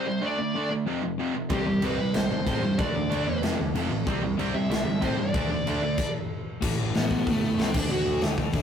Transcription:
0.06 overdriven electric guitar C3 G3, lead electric guitar C5
0.21 overdriven electric guitar D3 A3 D4, lead electric guitar D5
0.38 overdriven electric guitar D3 A3
0.54 overdriven electric guitar D3 A3 D4
0.70 overdriven electric guitar D3 A3
0.86 overdriven electric guitar F2 C3 F3
1.03 overdriven electric guitar F2 C3
1.18 overdriven electric guitar F2 C3 F3
1.35 overdriven electric guitar F2 C3
1.50 picked electric bass C2, overdriven electric guitar C3 G3 C4, lead electric guitar G4, kick, crash
1.66 picked electric bass C2, overdriven electric guitar C3 G3
1.82 picked electric bass C2, overdriven electric guitar C3 G3 C4, lead electric guitar B4, crash
1.98 picked electric bass C3, overdriven electric guitar C3 G3
2.14 picked electric bass C2, overdriven electric guitar C3 G3, lead electric guitar C5, snare, crash
2.31 picked electric bass G1, overdriven electric guitar C3 G3
2.46 picked electric bass A2, overdriven electric guitar C3 G3 C4, kick, crash
2.63 picked electric bass G2, overdriven electric guitar C3 G3
2.78 picked electric bass D2, overdriven electric guitar D3 A3 D4, lead electric guitar D5, kick, crash
2.95 picked electric bass D2, overdriven electric guitar D3 A3
3.12 picked electric bass D2, overdriven electric guitar D3 A3 D4, crash
3.27 picked electric bass E2, overdriven electric guitar D3 A3
3.42 picked electric bass F1, overdriven electric guitar F2 C3 F3, snare, crash
3.58 picked electric bass D2, overdriven electric guitar F2 C3
3.74 picked electric bass F1, overdriven electric guitar F2 C3 F3, crash
3.89 picked electric bass A1, overdriven electric guitar F2 C3
4.06 picked electric bass C2, overdriven electric guitar C3 G3 C4, kick, crash
4.22 picked electric bass C2, overdriven electric guitar C3 G3
4.37 picked electric bass C2, overdriven electric guitar C3 G3 C4, crash
4.53 overdriven electric guitar C3 G3, picked electric bass C3, lead electric guitar E5
4.69 picked electric bass C2, overdriven electric guitar C3 G3, lead electric guitar E5, snare, crash
4.84 picked electric bass G1, overdriven electric guitar C3 G3
5.01 picked electric bass A2, overdriven electric guitar C3 G3 C4, lead electric guitar C5, kick, crash
5.17 picked electric bass G2, overdriven electric guitar C3 G3, lead electric guitar D5
5.33 picked electric bass D2, overdriven electric guitar D3 A3 D4, kick, crash
5.50 picked electric bass D2, overdriven electric guitar D3 A3
5.66 picked electric bass D2, overdriven electric guitar D3 A3 D4, crash
5.82 picked electric bass D2, overdriven electric guitar D3 A3
5.98 kick, crash
6.61 picked electric bass A1, overdriven electric guitar A2 E3 A3, kick, crash
6.78 picked electric bass A1
6.95 picked electric bass A1, overdriven electric guitar A2 E3 A3, lead electric guitar B3, snare, open hi-hat
7.11 picked electric bass A1, overdriven electric guitar A2 E3 A3, kick
7.26 picked electric bass G1, overdriven electric guitar A2 E3 A3, lead electric guitar A3, kick, open hi-hat
7.57 picked electric bass C2, overdriven electric guitar A2 E3 A3, snare, open hi-hat
7.62 lead electric guitar C4
7.73 picked electric bass D2, overdriven electric guitar D3 A3 D4, lead electric guitar D4, kick, crash
7.89 picked electric bass D2, overdriven electric guitar D3 A3 D4, lead electric guitar F#4
8.05 picked electric bass D2
8.21 picked electric bass D2, overdriven electric guitar D3 A3 D4, snare, open hi-hat
8.37 overdriven electric guitar D3 A3 D4, kick
8.53 picked electric bass D2, overdriven electric guitar D3 A3 D4, kick, open hi-hat

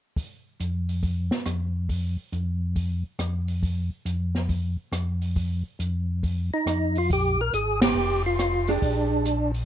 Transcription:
0.16 kick, open hi-hat
0.60 tonewheel organ F2, closed hi-hat
0.89 open hi-hat
1.03 kick, open hi-hat
1.31 snare
1.46 tonewheel organ F2, cross-stick, closed hi-hat
1.89 kick, open hi-hat
2.32 tonewheel organ F2, closed hi-hat
2.76 kick, open hi-hat
3.19 tonewheel organ F2, cross-stick, closed hi-hat
3.48 open hi-hat
3.63 kick, open hi-hat
4.05 tonewheel organ F2, closed hi-hat
4.35 snare
4.49 kick, open hi-hat
4.92 tonewheel organ F2, cross-stick, closed hi-hat
5.22 open hi-hat
5.36 kick, open hi-hat
5.79 tonewheel organ F2, closed hi-hat
6.23 kick, open hi-hat
6.54 tonewheel organ D#4
6.66 tonewheel organ F2, cross-stick, closed hi-hat
6.95 tonewheel organ F4, open hi-hat
7.10 tonewheel organ A#1 G4, kick, open hi-hat
7.41 tonewheel organ A#4
7.53 tonewheel organ G#1 G#4, closed hi-hat
7.82 tonewheel organ G4, snare, ride
7.95 tonewheel organ F1
8.26 tonewheel organ F4
8.39 cross-stick, closed hi-hat
8.67 hollow-body jazz guitar G#3 D4 G4, tonewheel organ D4, open hi-hat
8.82 tonewheel organ A#1, kick, open hi-hat
9.26 closed hi-hat
9.54 open hi-hat

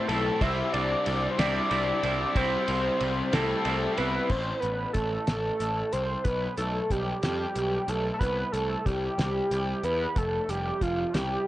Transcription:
0.08 picked electric bass B1, overdriven electric guitar A2 E3 A3 C4 E4 A4, analog synth lead A4, ride
0.41 picked electric bass C2, overdriven electric guitar C3 G3 C4 E4, analog synth lead E5, kick, ride
0.73 picked electric bass C2, analog synth lead D5, ride
1.06 picked electric bass C2, ride
1.31 analog synth lead C5
1.38 picked electric bass C2, overdriven electric guitar C3 G3 C4 E4, analog synth lead D5, snare, ride
1.70 picked electric bass C2, overdriven electric guitar C3 G3 C4 E4, ride
2.02 picked electric bass C2, overdriven electric guitar C3 G3 C4 E4, ride
2.35 picked electric bass C2, overdriven electric guitar C3 G3 C4 E4, analog synth lead C5, kick, ride
2.68 picked electric bass C2, ride
3.00 picked electric bass C2, ride
3.32 picked electric bass C2, overdriven electric guitar C3 G3 C4 E4, analog synth lead A4, snare, ride
3.65 picked electric bass C2, overdriven electric guitar C3 G3 C4 E4, ride
3.97 picked electric bass C2, overdriven electric guitar C3 G3 C4 E4, analog synth lead B4, ride
4.29 picked electric bass A1, analog synth lead C5, kick, crash
4.60 picked electric bass A1, analog synth lead B4, closed hi-hat
4.93 picked electric bass A1, analog synth lead A4, kick, closed hi-hat
5.27 picked electric bass A1, snare, closed hi-hat
5.60 picked electric bass A1, closed hi-hat
5.93 picked electric bass C2, analog synth lead C5, closed hi-hat
6.24 picked electric bass B1, analog synth lead B4, kick, closed hi-hat
6.58 picked electric bass B1, analog synth lead A4, closed hi-hat
6.91 picked electric bass B1, analog synth lead G4, kick, closed hi-hat
7.23 picked electric bass F2, analog synth lead G4, snare, closed hi-hat
7.56 picked electric bass B1, closed hi-hat
7.88 picked electric bass B1, analog synth lead A4, closed hi-hat
8.14 analog synth lead A4
8.19 picked electric bass C2, analog synth lead B4, kick, closed hi-hat
8.52 picked electric bass C2, analog synth lead A4, closed hi-hat
8.86 picked electric bass C2, analog synth lead G4, kick, closed hi-hat
9.18 picked electric bass C2, snare, closed hi-hat
9.51 picked electric bass C2, closed hi-hat
9.84 picked electric bass E2, analog synth lead B4, closed hi-hat
10.16 picked electric bass F1, analog synth lead A4, kick, closed hi-hat
10.49 picked electric bass F1, analog synth lead G4, closed hi-hat
10.81 picked electric bass F1, analog synth lead F4, kick, closed hi-hat
11.13 picked electric bass C2, analog synth lead G4, snare, closed hi-hat

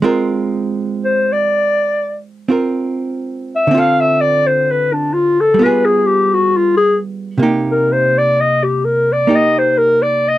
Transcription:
0.02 hollow-body jazz guitar G#3 C4 F4 A#4
1.05 clarinet C5
1.32 clarinet D5
2.49 hollow-body jazz guitar C4 F4 A#4
3.56 clarinet E5
3.67 hollow-body jazz guitar D3 C4
3.74 hollow-body jazz guitar F4 A4
3.80 clarinet F5
4.01 clarinet E5
4.21 clarinet D5
4.47 clarinet C5
4.71 clarinet B4
4.93 clarinet D4
5.14 clarinet F4
5.41 clarinet A4
5.54 hollow-body jazz guitar G3
5.59 hollow-body jazz guitar B3 F4
5.64 hollow-body jazz guitar G#4, clarinet B4
5.85 clarinet G#4
6.06 clarinet G4
6.34 clarinet F#4
6.57 clarinet F4
6.77 clarinet G#4
7.38 hollow-body jazz guitar C3 A#3
7.43 hollow-body jazz guitar D#4 G4
7.71 clarinet A#4
7.92 clarinet C5
8.18 clarinet D5
8.40 clarinet D#5
8.63 clarinet G4
8.85 clarinet A#4
9.13 clarinet D5
9.27 hollow-body jazz guitar A#3 D#4 G4
9.35 clarinet D#5
9.59 clarinet C5
9.78 clarinet A#4
10.02 clarinet D5
10.28 clarinet D#5

